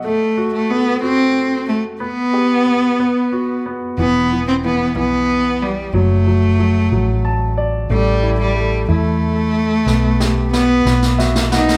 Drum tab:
SD |------------|------------|------------|------------|

SD |------------|o-o-o-oooooo|